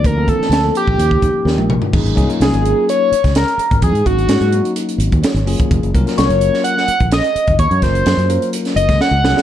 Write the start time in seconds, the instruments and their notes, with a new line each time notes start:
Already playing: fingered electric bass D2, tine electric piano F3 A#3 C4 D4 A4
0.04 analog synth lead A#4, kick, closed hi-hat
0.16 tine electric piano F3 A#3 C4 D4 A4
0.28 analog synth lead A4, kick, closed hi-hat
0.39 muted fingered electric bass stroke, snare
0.49 fingered electric bass D2, snare, closed hi-hat
0.63 tine electric piano F3 A#3 C4 D4 A4
0.75 analog synth lead G4, closed hi-hat
0.87 fingered electric bass A#1, kick
0.97 fingered electric bass D#2, tine electric piano F3 A#3 C#4 D#4 G4, closed hi-hat
1.11 kick
1.22 fingered electric bass D#2, kick, closed hi-hat
1.34 muted fingered electric bass stroke
1.45 fingered electric bass D#2, tine electric piano A#4, snare
1.57 fingered electric bass A#1, high tom
1.70 mid tom
1.82 floor tom
1.93 fingered electric bass G#1, tine electric piano F#3 A#3 C#4 D#4 G#4, kick, crash
2.04 fingered electric bass G#1, closed hi-hat
2.15 fingered electric bass C2, tine electric piano F#3 A#3 C#4 D#4 G#4, kick, closed hi-hat
2.28 tine electric piano F#3 A#3 C#4 D#4 F4, closed hi-hat
2.40 fingered electric bass C2, analog synth lead G#4, snare, closed hi-hat
2.53 fingered electric bass G#1, closed hi-hat
2.65 closed hi-hat
2.89 analog synth lead C#5, closed hi-hat
3.12 muted fingered electric bass stroke, closed hi-hat
3.24 fingered electric bass C#2, kick, snare, closed hi-hat
3.35 analog synth lead A#4, snare, closed hi-hat
3.48 closed hi-hat
3.58 muted fingered electric bass stroke, closed hi-hat
3.71 fingered electric bass G#1, kick, closed hi-hat
3.82 fingered electric bass F2, analog synth lead G#4, kick, closed hi-hat
3.92 fingered electric bass G#2, closed hi-hat
4.05 fingered electric bass G#1, tine electric piano F#3 A#3 C#4 D#4 F#4, analog synth lead F#4, kick, closed hi-hat
4.19 closed hi-hat
4.27 fingered electric bass G#2, snare, closed hi-hat
4.41 fingered electric bass G#2, closed hi-hat
4.52 tine electric piano F#3 A#3 C#4 D#4 F#4, closed hi-hat
4.65 closed hi-hat
4.76 closed hi-hat
4.89 closed hi-hat
4.98 fingered electric bass G#1, closed hi-hat
5.12 fingered electric bass D#2, kick, closed hi-hat
5.23 tine electric piano C#5, snare, closed hi-hat
5.34 fingered electric bass G#1, closed hi-hat
5.46 fingered electric bass F#1, tine electric piano F#3 A#3 C#4 F4 G#4, open hi-hat
5.60 muted fingered electric bass stroke, kick, closed hi-hat
5.71 fingered electric bass F#1, kick, closed hi-hat
5.83 fingered electric bass F#1, closed hi-hat
5.93 fingered electric bass C2, tine electric piano F#3 A#3 C#4 F4 A#4, kick, closed hi-hat
6.06 tine electric piano F#3 A#3 C#4 F4 A#4, snare, closed hi-hat
6.18 fingered electric bass C2, analog synth lead C#5, snare, closed hi-hat
6.29 fingered electric bass F#1, closed hi-hat
6.41 closed hi-hat
6.54 snare
6.64 analog synth lead F#5, closed hi-hat
6.78 snare
6.88 muted fingered electric bass stroke, closed hi-hat
7.00 fingered electric bass A#1, kick, closed hi-hat
7.12 analog synth lead D#5, snare, closed hi-hat
7.24 closed hi-hat
7.35 muted fingered electric bass stroke, closed hi-hat
7.47 fingered electric bass F#1, kick, closed hi-hat
7.59 fingered electric bass D#2, analog synth lead C#5, kick, closed hi-hat
7.71 fingered electric bass F#2, closed hi-hat
7.82 fingered electric bass F#1, tine electric piano F#3 A#3 C#4 F4 A#4, analog synth lead C5, kick, snare, closed hi-hat
7.95 closed hi-hat
8.06 fingered electric bass F#2, snare, closed hi-hat
8.17 fingered electric bass F#2, closed hi-hat
8.28 tine electric piano F#3 A#3 C#4 F4 A#4, closed hi-hat
8.42 closed hi-hat
8.53 closed hi-hat
8.65 snare, closed hi-hat
8.76 fingered electric bass F#1, analog synth lead D#5, closed hi-hat
8.89 fingered electric bass C#2, kick, snare, closed hi-hat
9.01 analog synth lead F#5, snare
9.11 fingered electric bass C#2
9.23 fingered electric bass C2, tine electric piano F#3 A#3 C#4 F4 G#4, snare
9.34 tine electric piano F#3 A#3 C#4 F4 G#4, muted fingered electric bass stroke, snare